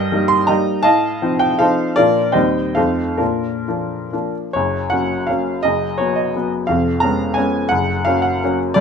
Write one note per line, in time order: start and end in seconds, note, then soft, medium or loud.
0.00 0.11 G2 medium
0.00 0.27 G4 medium
0.00 0.27 A#4 medium
0.00 0.30 D#5 loud
0.12 0.46 G3 medium
0.12 0.46 A#3 medium
0.12 0.46 D#4 medium
0.28 0.48 C6 loud
0.47 0.82 G3 medium
0.47 0.82 A#3 medium
0.47 0.82 D#4 medium
0.47 0.82 D#5 medium
0.47 0.83 G5 medium
0.47 0.85 A#5 medium
0.83 1.21 A2 medium
0.83 1.37 D#5 medium
0.83 1.37 F5 medium
0.83 1.40 A5 loud
1.22 1.57 F3 medium
1.22 1.57 C4 medium
1.22 1.57 D#4 medium
1.39 1.60 G5 loud
1.59 1.94 F3 medium
1.59 1.94 C4 medium
1.59 1.94 D#4 medium
1.59 1.95 A4 medium
1.59 1.95 C5 medium
1.59 1.97 F5 medium
1.96 2.35 A#2 medium
1.96 2.32 F3 medium
1.96 2.33 A#3 medium
1.96 2.33 D4 medium
1.96 2.33 F4 medium
1.96 2.33 A#4 medium
1.96 2.35 D5 loud
2.32 2.75 D#2 medium
2.32 2.72 G3 soft
2.32 2.73 C4 soft
2.32 2.73 D#4 soft
2.32 2.72 C5 medium
2.32 2.73 D#5 medium
2.32 2.75 G5 medium
2.75 3.19 F2 medium
2.75 3.16 A3 soft
2.75 3.17 C4 soft
2.75 3.17 D#4 soft
2.75 3.17 A4 medium
2.75 3.17 C5 medium
2.75 3.19 F5 medium
3.17 3.66 A#2 medium
3.17 3.67 D4 medium
3.17 4.30 F4 medium
3.17 4.33 A#4 medium
3.68 4.09 F3 soft
3.68 4.10 A#3 soft
3.68 4.10 D4 soft
4.13 4.50 F3 soft
4.13 4.50 A#3 soft
4.13 4.50 D4 soft
4.53 5.61 F#1 medium
4.53 5.61 F#2 medium
4.53 4.90 C#5 medium
4.90 5.25 F#3 soft
4.90 5.25 A#3 soft
4.90 5.26 C#4 soft
4.90 5.28 F#5 medium
5.27 5.60 F#3 soft
5.27 5.60 A#3 soft
5.27 5.60 C#4 soft
5.27 5.62 F5 medium
5.63 6.65 F#1 medium
5.63 6.65 F#2 medium
5.63 5.99 D#5 medium
5.98 6.32 F#3 soft
5.98 6.32 B3 soft
5.98 6.17 C#5 medium
6.15 6.50 D#5 medium
6.36 6.65 F#3 soft
6.36 6.65 B3 soft
6.67 7.68 F1 medium
6.67 7.68 F2 medium
6.67 7.01 F5 medium
7.00 7.34 G#3 soft
7.00 7.34 B3 medium
7.00 7.34 C#4 soft
7.00 7.36 A#5 medium
7.34 7.67 G#3 soft
7.34 7.67 B3 medium
7.34 7.67 C#4 medium
7.34 7.69 G#5 medium
7.69 8.74 F#1 medium
7.69 8.73 F#2 medium
7.69 8.05 F#5 loud
8.05 8.39 F#3 medium
8.05 8.39 A#3 medium
8.05 8.39 C#4 medium
8.05 8.24 F5 medium
8.22 8.58 F#5 medium
8.44 8.74 F#3 medium
8.44 8.74 A#3 medium
8.44 8.74 C#4 medium
8.74 8.80 G1 medium
8.74 8.80 G2 medium
8.74 8.80 D5 loud